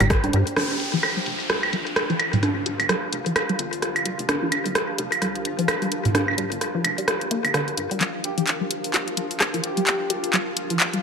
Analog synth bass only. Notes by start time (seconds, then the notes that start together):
0.00 G1
0.33 G2
0.57 G1
0.93 G1
1.26 F1
1.50 C2
1.73 G1
2.33 G1
2.80 G1
3.12 F1
3.59 G1
4.05 F1
4.19 F1
4.29 G1
4.66 G1
4.99 F1
5.22 C2
5.45 G1
6.05 G1
6.51 G1
6.84 F1
7.45 G1
7.78 G2